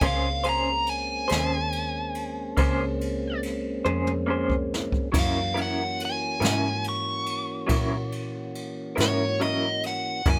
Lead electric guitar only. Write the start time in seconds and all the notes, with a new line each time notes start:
0.06 F5
0.49 A#5
0.89 G#5
5.19 F5
5.62 F#5
6.05 G#5
6.89 C#6
9.01 C#5
9.42 D#5
9.87 F#5
10.30 G#5